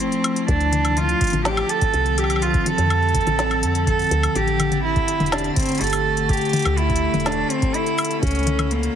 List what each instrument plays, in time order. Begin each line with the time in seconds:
Already playing: ambient pad F3 A3 E4
0.00 cello C4, closed hi-hat
0.12 closed hi-hat
0.24 closed hi-hat, high woodblock
0.36 closed hi-hat
0.48 fm bass D2, ambient pad D3 C4, cello D4, kick, closed hi-hat
0.60 closed hi-hat
0.73 closed hi-hat, high tom
0.85 closed hi-hat, high tom, high woodblock
0.91 high tom
0.97 cello F4, closed hi-hat, high tom
1.03 high tom
1.09 closed hi-hat
1.21 kick, closed hi-hat
1.24 closed hi-hat
1.27 closed hi-hat
1.30 closed hi-hat
1.33 fm bass A1, closed hi-hat, high tom
1.45 cello G4, snare, closed hi-hat
1.57 closed hi-hat, high woodblock
1.69 cello A4, closed hi-hat
1.81 kick, closed hi-hat
1.94 fm bass C2, closed hi-hat
2.06 closed hi-hat
2.18 cello G4, closed hi-hat, high woodblock
2.24 high woodblock
2.30 closed hi-hat, high woodblock
2.36 high woodblock
2.42 cello F4, closed hi-hat
2.54 kick, closed hi-hat
2.66 cello A4, closed hi-hat, high tom
2.78 fm bass F2, closed hi-hat, high tom
2.82 high tom
2.86 high tom
2.90 closed hi-hat, high woodblock
3.02 closed hi-hat
3.09 closed hi-hat
3.15 kick, closed hi-hat
3.21 closed hi-hat
3.27 fm bass A1, closed hi-hat, high tom
3.39 snare, closed hi-hat
3.51 closed hi-hat, high woodblock
3.63 fm bass F2, closed hi-hat
3.75 closed hi-hat
3.87 cello A4, kick, closed hi-hat
3.99 closed hi-hat
4.02 closed hi-hat
4.04 closed hi-hat
4.07 closed hi-hat
4.09 fm bass D2, closed hi-hat
4.11 closed hi-hat
4.23 closed hi-hat, high woodblock
4.35 fm bass A1, ambient pad A3 G4, cello G4, closed hi-hat
4.48 closed hi-hat
4.60 closed hi-hat, high tom, high woodblock
4.72 closed hi-hat, high tom
4.84 cello E4
4.96 kick, closed hi-hat
5.08 closed hi-hat
5.20 fm bass E1, closed hi-hat, high tom
5.26 closed hi-hat
5.32 cello D4, snare, closed hi-hat, high woodblock
5.38 closed hi-hat
5.44 closed hi-hat
5.56 cello C4, kick, closed hi-hat
5.60 closed hi-hat
5.63 closed hi-hat
5.66 closed hi-hat
5.69 closed hi-hat
5.72 closed hi-hat
5.75 closed hi-hat
5.78 fm bass G1, closed hi-hat
5.81 cello A4, closed hi-hat
5.84 closed hi-hat
5.87 closed hi-hat
5.93 high woodblock, shaker
6.17 closed hi-hat
6.29 cello G4, ambient pad A4, kick, closed hi-hat
6.33 closed hi-hat
6.37 closed hi-hat
6.41 closed hi-hat
6.45 closed hi-hat
6.49 closed hi-hat
6.53 closed hi-hat, high tom
6.56 closed hi-hat
6.59 closed hi-hat
6.62 closed hi-hat
6.65 fm bass D2, closed hi-hat, high tom, high woodblock
6.77 cello E4, closed hi-hat
6.90 kick, closed hi-hat
6.96 closed hi-hat
7.14 fm bass E1, closed hi-hat, high tom
7.20 closed hi-hat
7.26 cello D4, snare, closed hi-hat, high woodblock
7.32 closed hi-hat
7.50 cello C4, closed hi-hat
7.62 kick, closed hi-hat
7.74 cello E4, closed hi-hat
7.86 closed hi-hat
7.98 high woodblock, shaker
8.05 closed hi-hat
8.11 closed hi-hat
8.23 fm bass C#2, ambient pad C#3 F4 C5, cello C#4, kick, closed hi-hat
8.27 closed hi-hat
8.31 closed hi-hat
8.35 closed hi-hat
8.39 closed hi-hat
8.43 closed hi-hat
8.47 closed hi-hat, high tom
8.59 closed hi-hat, high tom, high woodblock
8.71 cello A#3, closed hi-hat
8.83 closed hi-hat